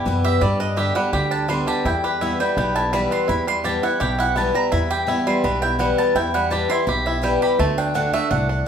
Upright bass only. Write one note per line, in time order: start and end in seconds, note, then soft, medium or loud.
0.06 0.36 F#2 medium
0.41 0.90 G2 medium
1.13 1.61 D2 medium
1.85 2.33 E2 loud
2.57 3.05 B1 loud
3.29 3.77 E2 medium
4.01 4.49 B1 medium
4.72 5.21 E2 medium
5.44 5.92 B1 medium
6.15 6.64 E2 medium
6.87 7.36 B1 medium
7.59 8.07 D2 loud
8.31 8.62 C2 loud